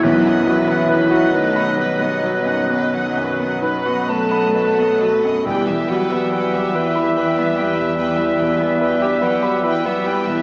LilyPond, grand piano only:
\new Staff \with { instrumentName = "Grand piano" } { \time 12/8 \key e \minor \tempo 4. = 47 b,,16 fis,16 fis16 b16 b'16 fis'16 b'16 b''16 b'16 b16 fis16 fis,16 b,,16 fis16 fis,16 b16 b'16 fis'16 b'16 b''16 b'16 b16 fis16 fis,16 | e,16 b,16 g16 b16 b'16 g'16 b'16 b''16 b'16 b16 g16 b,16 e,16 g16 b,16 b16 b'16 g'16 b'16 b''16 b'16 b16 g16 b,16 | }